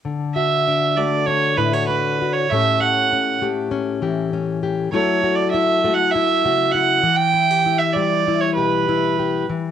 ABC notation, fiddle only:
X:1
M:4/4
L:1/16
Q:1/4=99
K:D
V:1 name="Fiddle"
z2 e4 d2 c2 B c B3 c | e2 f4 z8 z2 | c3 d e3 f e4 f3 g- | g3 e d3 c B6 z2 |]